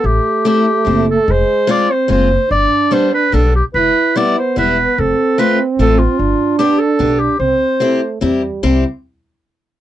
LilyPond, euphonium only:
\new Staff \with { instrumentName = "Euphonium" } { \time 3/4 \key c \major \tempo 4 = 147 a2. | aes4 c'2 | d'2~ d'8 r8 | e'4 b2 |
c'2. | d'2. | c'4 a4 g4 | g8 r2 r8 | }